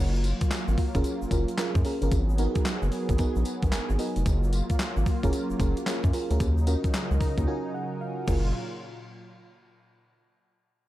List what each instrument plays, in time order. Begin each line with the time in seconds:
Already playing: analog synth bass F#1, analog synth pad F#3 A#3 F4, fm electric piano A#4 C#5
0.15 shaker
0.24 closed hi-hat, tambourine
0.41 kick, closed hi-hat, shaker
0.51 snare, clap, closed hi-hat, tambourine, shaker
0.68 analog synth bass G#1, shaker
0.77 kick, open hi-hat, shaker
0.95 analog synth bass F#1, fm electric piano C#4 F4 G#4 A#4, kick, closed hi-hat, shaker
1.04 closed hi-hat, tambourine, shaker
1.22 analog synth bass F#1, shaker
1.31 analog synth bass F#1, fm electric piano C#4 F4 G#4 A#4, kick, closed hi-hat, tambourine, shaker
1.48 closed hi-hat, shaker
1.58 fm electric piano C#4 F4 G#4 A#4, snare, clap, closed hi-hat, tambourine, shaker
1.75 analog synth bass F#2, kick, shaker
1.85 fm electric piano C#4 F4 G#4 A#4, open hi-hat, tambourine, shaker
2.02 analog synth bass G1, fm electric piano C#4 F4 G#4 A#4, closed hi-hat, shaker
2.11 analog synth bass G#1, analog synth pad F#3 B3 G#4, kick, closed hi-hat, tambourine, shaker
2.29 shaker
2.38 fm electric piano B3 D#4 F#4 A#4, closed hi-hat, tambourine
2.55 kick, closed hi-hat, shaker
2.65 snare, clap, closed hi-hat, tambourine, shaker
2.82 analog synth bass F#1, shaker
2.92 open hi-hat, shaker
3.09 analog synth bass G#1, kick, closed hi-hat, shaker
3.18 analog synth bass A#1, fm electric piano B3 D#4 F#4 A#4, kick, closed hi-hat, tambourine, shaker
3.36 analog synth bass A#1, shaker
3.45 closed hi-hat, tambourine, shaker
3.62 analog synth bass A#1, kick, closed hi-hat, shaker
3.72 analog synth bass G#1, fm electric piano G#5, snare, clap, closed hi-hat, tambourine, shaker
3.90 analog synth bass G#1, shaker
3.99 fm electric piano B3 D#4 F#4 A#4 D#5, open hi-hat, tambourine, shaker
4.16 analog synth bass F1, closed hi-hat, shaker
4.26 analog synth bass F#1, analog synth pad F#3 A#3 F4, kick, closed hi-hat, tambourine, shaker
4.44 shaker
4.53 closed hi-hat, tambourine
4.70 kick, closed hi-hat, shaker
4.79 snare, clap, closed hi-hat, tambourine, shaker
4.97 analog synth bass G#1, shaker
5.06 kick, open hi-hat, shaker
5.23 analog synth bass F#1, fm electric piano C#4 F4 G#4 A#4, kick, closed hi-hat, shaker
5.33 closed hi-hat, tambourine, shaker
5.50 analog synth bass F#1, shaker
5.59 analog synth bass F#1, fm electric piano C#4 F4 G#4 A#4, kick, closed hi-hat, tambourine, shaker
5.77 closed hi-hat, shaker
5.86 fm electric piano C#4 F4 G#4 A#4, snare, clap, closed hi-hat, tambourine, shaker
6.04 analog synth bass F#2, kick, shaker
6.13 fm electric piano C#4 F4 G#4 A#4, open hi-hat, tambourine, shaker
6.30 analog synth bass D2, fm electric piano C#4 F4 G#4 A#4, closed hi-hat, shaker
6.40 analog synth bass D#2, analog synth pad C#3 F#3 D#4, kick, closed hi-hat, tambourine, shaker
6.58 shaker
6.66 fm electric piano C#4 F4 F#4 A#4, closed hi-hat, tambourine
6.84 kick, closed hi-hat, shaker
6.94 snare, clap, closed hi-hat, tambourine, shaker
7.11 analog synth bass C#2, shaker
7.21 fm electric piano A#5, kick, open hi-hat, shaker
7.38 analog synth bass D#2, kick, closed hi-hat, shaker
7.47 fm electric piano C#4 F4 F#4 A#4 G#5
7.74 fm electric piano F#5
8.01 fm electric piano F5
8.28 analog synth bass F#1, analog synth pad A#2 F#3 F4, fm electric piano C#4 F4 G#4 A#4, kick, crash, shaker